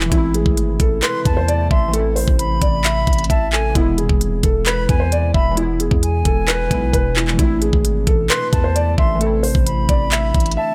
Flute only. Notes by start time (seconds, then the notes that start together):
1.03 C6
1.25 A5
1.71 C6
2.39 B5
3.30 A5
3.52 G#5
4.66 B5
4.89 G#5
5.35 B5
6.03 G#5
8.30 C6
8.52 A5
8.98 C6
9.66 B5
10.57 A5